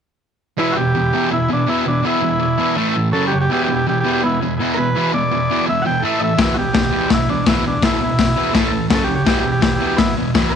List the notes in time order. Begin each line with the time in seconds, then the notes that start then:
0.58 E2 B2 E3 E4 G#4 B4
0.72 E4 F#4 G#4 B4
0.77 E2 B2 G4
0.95 E2 B2 G#3 E4 B4
1.13 E2 B2 E3
1.31 E2 B2 E4 G#4 B4
1.49 E2 B2 D4
1.68 E2 B2 E3 E4 G#4 B4
1.87 E2 B2 D4
2.04 E2 B2 E3 E4 G#4 B4
2.22 E2 B2 E4 G#4 B4
2.40 E2 B2 E4 G#4 D5
2.58 E2 B2 E3
2.75 A2 E3 A3 E4 A4 E5
2.96 A2 E3
3.12 F#2 C#3 F#3 C#4 F#4 A4 C#5
3.28 G4
3.32 F#2 C#3
3.41 G4
3.49 E2 B2 E3 B3 E4 G4 G#4
3.65 G4
3.69 E2 B2 B3 E4 G#4
3.76 G4
3.87 E2 B2 B3 E4 G4 G#4
4.01 E2 G4
4.05 B2 E3
4.12 G4
4.21 E2 B2 B3 E4 G#4
4.25 E4
4.41 E2 B2
4.57 E2 B2 B3 E4 G#4
4.61 E3
4.74 E2 B2 A#4 B4
4.94 E2 B2 E3 B3 E4 G#4
5.13 E2 B2 B3 E4 G#4 D5
5.28 E2 B2 B3 E4 G#4
5.50 E2 B2 E3
5.66 E2 B2 B3 E4 G#4 E5
5.82 E2 B2 F#5
5.87 G5
6.00 A2 A3 E4 A4
6.04 E3 A3 E5
6.20 A2 E3 D#5
6.24 E5
6.37 E2 B2 E3 B3 E4 G#4, kick, snare, open hi-hat
6.42 E4
6.54 E2 B2 B3 E4 F#4 G#4
6.59 G4
6.74 E2 B2 G#3 B3 E4, kick, snare, open hi-hat
6.91 E2 B2 E3
7.10 E2 B2 B3 E4 G#4, kick, snare, open hi-hat
7.29 E2 B2 D4
7.46 E2 B2 E3 B3 E4 G#4, kick, snare, open hi-hat
7.64 E2 B2 D4
7.82 E2 B2 E3 B3 E4 G#4, kick, snare, open hi-hat
8.01 E2 B2 B3 E4 G#4
8.18 E2 B2 B3 E4 G#4, kick, snare, open hi-hat
8.36 E2 B2 E3
8.53 A2 E3 A3 E4 A4, kick, snare, open hi-hat
8.72 A2 E3
8.90 F#2 C#3 F#3 C#4 F#4 C#5, kick, snare, open hi-hat
8.94 A4
9.04 F#2 G4
9.08 C#3
9.15 G4
9.26 E2 B2 E3 B3 E4 G4 G#4, kick, snare, open hi-hat
9.40 G4
9.44 E2 B2 B3 E4 G#4
9.52 G4
9.61 E2 B2 B3 E4 G4 G#4, kick, snare, open hi-hat
9.75 G4
9.79 E2 B2 E3
9.87 G4
9.97 E2 B2 B3 E4 G#4, kick, snare, open hi-hat
10.17 E2 B2
10.34 E2 B2 E3 B3 E4 G#4, kick, snare, open hi-hat
10.50 E2 A#4